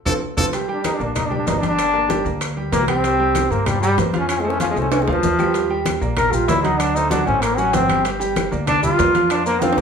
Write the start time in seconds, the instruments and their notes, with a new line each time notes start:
0.05 upright bass F2, grand piano C4 F4 A4, trumpet A4, low bongo, low conga, high timbale, claves, maracas
0.37 upright bass F2, grand piano C4 F4 A4, trumpet A4, low bongo, low conga, high timbale, claves, maracas
0.53 grand piano G3 G4 G5, high bongo, high conga, high timbale, maracas
0.68 grand piano G3 G4 G5, high bongo, high conga
0.74 trombone D4
0.84 trombone D#4, high bongo, high conga, high timbale, low timbale, claves, maracas
0.95 trombone D4
1.00 upright bass A#1, grand piano A#3 A#4 D5, high bongo, high conga, maracas
1.05 trombone D4
1.15 trombone D#4, high bongo, high conga, low conga, high timbale, claves, maracas
1.26 trombone D4
1.30 grand piano G3 G4 G5, high bongo, high conga, low conga
1.37 trombone D4
1.46 upright bass G1, grand piano A#3 A#4 D5, trombone D#4, high bongo, low bongo, high conga, high timbale, low timbale, maracas
1.58 grand piano G3 G4, trombone D4
1.62 grand piano G5, high conga, high timbale, maracas
1.68 trombone D4
1.79 high bongo, high conga, high timbale, claves, maracas
1.93 grand piano A#3 A#4 D5, high bongo, high conga
2.09 grand piano G3 G4 G5, high bongo, high conga, high timbale, low timbale, maracas
2.25 upright bass D2, grand piano A#3 A#4 D5, high bongo, high conga, maracas
2.41 high bongo, high conga, high timbale, claves, maracas
2.57 grand piano G3 G4 G5, high bongo, high conga
2.72 upright bass C2, trombone A#3, high bongo, low bongo, high conga, high timbale, low timbale, maracas
2.88 grand piano G3 G4 G5, trombone C4, high conga, high timbale, claves, maracas
3.04 grand piano G3 G4 G5, high bongo, high conga, high timbale, maracas
3.19 grand piano G3 G4 G5, high bongo, high conga
3.35 high bongo, high conga, high timbale, low timbale, claves, maracas
3.51 upright bass G2, grand piano A#3 A#4 C5, trombone A#3, high bongo, high conga, maracas
3.66 trombone G3, high bongo, high conga, low conga, high timbale, claves, maracas
3.81 trombone G3, grand piano G3 G4 G5, high bongo, high conga, maracas
3.98 upright bass F2, grand piano A#3 A#4 C5, high bongo, low bongo, high conga, high timbale, low timbale, maracas
4.13 grand piano F3 F4 F5, high conga, high timbale, maracas
4.19 trombone C#4
4.29 trombone C#4, high bongo, high conga, high timbale, claves, maracas
4.40 trombone G#3, high bongo
4.45 grand piano A3 A4 C5, high conga
4.50 trombone C#4, high bongo
4.60 grand piano F3 F4 F5, trombone C#4, high conga, high timbale, low timbale, maracas
4.71 trombone G#3, low bongo
4.76 upright bass C2, grand piano A3 A4 C5, high conga, maracas
4.81 trombone C#4, low bongo
4.92 trombone C#4, low bongo, high conga, high timbale, claves, maracas
5.02 trombone G#3, low bongo
5.07 upright bass D2, grand piano F3 F4 F5, high conga, low timbale
5.12 trombone F3, low bongo
5.23 upright bass D#2, high conga, low timbale, maracas
5.39 grand piano G3 G4 G5, high conga, low timbale, claves, maracas
5.44 low bongo
5.54 grand piano G3 G4 G5, high bongo, high conga, high timbale, maracas
5.70 grand piano G3 G4 G5, high bongo, high conga
5.85 high bongo, high conga, high timbale, low timbale, claves, maracas
6.01 upright bass A#1, grand piano A#3 A#4 D5, high bongo, high conga, maracas
6.17 trombone A#4, high bongo, high conga, low conga, high timbale, claves, maracas
6.32 grand piano G3 G4 G5, trombone F4, high bongo, high conga, low conga, maracas
6.48 upright bass D2, grand piano A#3 A#4 D5, trombone E4, high bongo, low bongo, high conga, high timbale, low timbale, maracas
6.63 grand piano F#3 F#4 F#5, trombone D#4, high conga, high timbale, maracas
6.79 trombone D4, high bongo, high conga, high timbale, claves, maracas
6.95 grand piano A3 A4 C5, trombone D#4, high bongo, high conga, maracas
7.10 grand piano F#3 F#4 F#5, trombone D4, high bongo, high conga, high timbale, low timbale, maracas
7.26 upright bass A1, grand piano A3 A4 C5, trombone C#4, maracas
7.41 trombone A#3, high bongo, high conga, high timbale, claves, maracas
7.58 grand piano F#3 F#4 F#5, trombone C#4, high bongo, high conga, maracas
7.73 upright bass G1, trombone C4, high bongo, low bongo, high conga, high timbale, low timbale, maracas
7.88 grand piano G3 G4 G5, high conga, high timbale, claves, maracas
8.04 grand piano G3 G4 G5, high bongo, high conga, high timbale, maracas
8.19 grand piano G3 G4 G5, high bongo, high conga, maracas
8.36 high bongo, high conga, high timbale, low timbale, claves, maracas
8.51 upright bass D2, grand piano A#3 A#4 D5, high bongo, high conga, maracas
8.67 trombone D4, high bongo, high conga, low conga, high timbale, claves, maracas
8.83 grand piano G3 G4 G5, trombone F4, high bongo, high conga, low conga, maracas
8.98 upright bass F2, grand piano A#3 A#4 D5, high bongo, low bongo, high conga, high timbale, low timbale, maracas
9.15 grand piano F3 F4 F5, high conga, high timbale, maracas
9.30 trombone D4, high bongo, high conga, high timbale, claves, maracas
9.46 grand piano A#3 A#4 C5, trombone A#3, high bongo, high conga, maracas
9.61 grand piano F3 F4 F5, trombone C4, high bongo, high conga, high timbale, maracas
9.73 high timbale
9.77 upright bass C2, grand piano A#3 A#4, high bongo, high conga, maracas